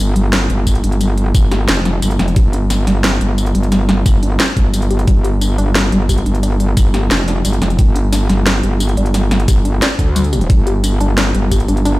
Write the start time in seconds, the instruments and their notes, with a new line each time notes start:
Already playing: wobble bass G1
0.00 synth arpeggio sound D4
0.16 wobble bass G1, synth arpeggio sound G3, closed hi-hat
0.33 synth arpeggio sound G3, snare, closed hi-hat
0.50 wobble bass G1, synth arpeggio sound G3, closed hi-hat
0.67 synth arpeggio sound G4, kick, closed hi-hat, tambourine
0.75 closed hi-hat
0.84 wobble bass G1, synth arpeggio sound D4, closed hi-hat
0.92 closed hi-hat
1.01 synth arpeggio sound G3, closed hi-hat, tambourine
1.18 synth arpeggio sound G3, closed hi-hat
1.35 wobble bass G1, synth arpeggio sound G3, kick, closed hi-hat, tambourine
1.51 synth arpeggio sound G4, snare, closed hi-hat
1.68 wobble bass F1, synth arpeggio sound D4, snare, closed hi-hat
1.85 synth arpeggio sound G3, snare, closed hi-hat
2.02 wobble bass G1, synth arpeggio sound G3, closed hi-hat, tambourine
2.11 closed hi-hat
2.19 wobble bass F1, synth arpeggio sound G3, snare, closed hi-hat
2.28 closed hi-hat
2.36 wobble bass G1, synth arpeggio sound G4, kick, closed hi-hat
2.53 synth arpeggio sound D4, closed hi-hat
2.70 synth arpeggio sound G3, snare, closed hi-hat, tambourine
2.87 wobble bass G1, synth arpeggio sound G3, snare, closed hi-hat
3.04 synth arpeggio sound G3, snare, closed hi-hat
3.21 wobble bass G1, synth arpeggio sound G4, closed hi-hat
3.38 synth arpeggio sound D4, closed hi-hat, tambourine
3.46 closed hi-hat
3.55 wobble bass G1, synth arpeggio sound G3, closed hi-hat
3.63 closed hi-hat
3.72 synth arpeggio sound G3, snare, closed hi-hat, tambourine
3.89 synth arpeggio sound G3, snare, closed hi-hat
4.06 wobble bass G1, synth arpeggio sound G4, kick, closed hi-hat, tambourine
4.23 synth arpeggio sound D4, closed hi-hat
4.40 synth arpeggio sound G3, snare, closed hi-hat
4.57 wobble bass G1, synth arpeggio sound G3, kick, closed hi-hat
4.74 synth arpeggio sound G3, closed hi-hat, tambourine
4.82 closed hi-hat
4.91 synth arpeggio sound G4, closed hi-hat
4.99 closed hi-hat
5.07 wobble bass G1, synth arpeggio sound G3, kick, closed hi-hat
5.24 synth arpeggio sound G4, closed hi-hat
5.41 synth arpeggio sound D4, closed hi-hat, tambourine
5.58 wobble bass G1, synth arpeggio sound D4, closed hi-hat
5.75 synth arpeggio sound G3, snare, closed hi-hat
5.92 wobble bass G1, synth arpeggio sound G3, closed hi-hat
6.09 synth arpeggio sound G4, kick, closed hi-hat, tambourine
6.18 closed hi-hat
6.26 wobble bass G1, synth arpeggio sound D4, closed hi-hat
6.35 closed hi-hat
6.43 synth arpeggio sound D4, closed hi-hat, tambourine
6.60 synth arpeggio sound G3, closed hi-hat
6.77 wobble bass G1, synth arpeggio sound G3, kick, closed hi-hat, tambourine
6.94 synth arpeggio sound G4, snare, closed hi-hat
7.11 wobble bass F1, synth arpeggio sound D4, snare, closed hi-hat
7.28 synth arpeggio sound D4, snare, closed hi-hat
7.45 wobble bass G1, synth arpeggio sound G3, closed hi-hat, tambourine
7.53 closed hi-hat
7.62 wobble bass F1, synth arpeggio sound G3, snare, closed hi-hat
7.70 closed hi-hat
7.79 wobble bass G1, synth arpeggio sound G4, kick, closed hi-hat
7.96 synth arpeggio sound D4, closed hi-hat
8.13 synth arpeggio sound D4, snare, closed hi-hat, tambourine
8.29 wobble bass G1, synth arpeggio sound G3, snare, closed hi-hat
8.46 synth arpeggio sound G3, snare, closed hi-hat
8.63 wobble bass G1, synth arpeggio sound G4, closed hi-hat
8.80 synth arpeggio sound D4, closed hi-hat, tambourine
8.89 closed hi-hat
8.97 wobble bass G1, synth arpeggio sound D4, closed hi-hat
9.06 closed hi-hat
9.14 synth arpeggio sound G3, snare, closed hi-hat, tambourine
9.31 synth arpeggio sound G3, snare, closed hi-hat
9.40 closed hi-hat
9.48 wobble bass G1, synth arpeggio sound G4, kick, closed hi-hat, tambourine
9.65 synth arpeggio sound D4, closed hi-hat
9.82 synth arpeggio sound D4, snare, closed hi-hat
9.99 wobble bass D2, synth arpeggio sound G3, kick, closed hi-hat
10.16 synth arpeggio sound G3, closed hi-hat, tambourine
10.24 closed hi-hat
10.33 synth arpeggio sound G4, closed hi-hat, tambourine
10.41 closed hi-hat
10.50 wobble bass G1, synth arpeggio sound G3, kick, closed hi-hat
10.67 synth arpeggio sound G4, closed hi-hat
10.84 synth arpeggio sound D4, closed hi-hat, tambourine
11.01 wobble bass G1, synth arpeggio sound D4, closed hi-hat
11.18 synth arpeggio sound G3, snare, closed hi-hat
11.34 wobble bass G1, synth arpeggio sound G3, closed hi-hat
11.52 synth arpeggio sound G4, kick, closed hi-hat, tambourine
11.60 closed hi-hat
11.68 wobble bass G1, synth arpeggio sound D4, closed hi-hat
11.77 closed hi-hat
11.85 synth arpeggio sound D4, closed hi-hat, tambourine